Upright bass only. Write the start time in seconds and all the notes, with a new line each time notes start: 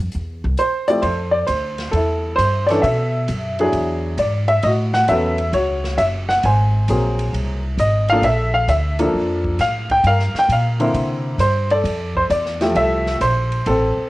Already playing: F2
0.15 E2
0.44 C2
1.03 F2
1.48 D2
1.93 E2
2.38 G2
2.83 B2
3.29 F#2
3.73 E2
4.18 G#2
4.63 A2
5.09 E2
5.53 C#2
5.98 F#1
6.44 G#1
6.89 A#1
7.33 C2
7.78 G#1
8.22 A#1
8.68 D2
9.14 F2
9.59 A2
10.04 G2
10.34 muted upright bass stroke
10.49 A#2
10.94 C3
11.38 G2
11.84 F2
12.30 E2
12.75 C2
13.21 A#1
13.66 A1
13.97 muted upright bass stroke